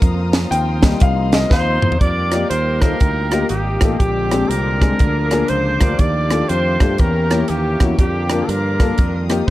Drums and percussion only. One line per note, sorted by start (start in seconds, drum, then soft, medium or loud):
0.02 kick loud
0.02 closed hi-hat medium
0.33 snare loud
0.33 closed hi-hat medium
0.52 closed hi-hat medium
0.83 kick medium
0.83 snare loud
0.83 closed hi-hat medium
1.00 kick loud
1.00 closed hi-hat medium
1.32 snare loud
1.32 closed hi-hat medium
1.51 kick loud
1.51 snare medium
1.82 mid tom medium
1.92 floor tom medium
2.01 kick medium
2.01 closed hi-hat medium
2.32 cross-stick loud
2.32 closed hi-hat medium
2.51 closed hi-hat medium
2.82 kick medium
2.82 cross-stick medium
2.82 closed hi-hat medium
3.00 kick medium
3.00 closed hi-hat medium
3.31 cross-stick medium
3.31 closed hi-hat medium
3.49 closed hi-hat medium
3.81 kick medium
3.81 cross-stick loud
3.81 closed hi-hat medium
4.00 kick medium
4.00 closed hi-hat medium
4.31 cross-stick medium
4.31 closed hi-hat medium
4.51 closed hi-hat medium
4.82 kick medium
4.82 cross-stick medium
4.82 closed hi-hat soft
4.99 kick medium
4.99 closed hi-hat medium
5.31 cross-stick medium
5.31 closed hi-hat medium
5.48 closed hi-hat medium
5.81 kick medium
5.81 cross-stick loud
5.81 closed hi-hat medium
5.99 kick medium
5.99 closed hi-hat medium
6.30 cross-stick loud
6.30 closed hi-hat medium
6.49 closed hi-hat medium
6.80 kick medium
6.80 cross-stick medium
6.80 closed hi-hat soft
6.98 kick medium
6.98 closed hi-hat medium
7.31 cross-stick loud
7.31 closed hi-hat medium
7.48 closed hi-hat medium
7.80 kick medium
7.80 cross-stick medium
7.80 closed hi-hat medium
7.99 kick medium
7.99 closed hi-hat medium
8.29 cross-stick loud
8.29 closed hi-hat medium
8.49 closed hi-hat medium
8.80 kick medium
8.80 cross-stick medium
8.80 closed hi-hat soft
8.98 kick medium
8.98 closed hi-hat medium
9.30 cross-stick loud
9.30 closed hi-hat medium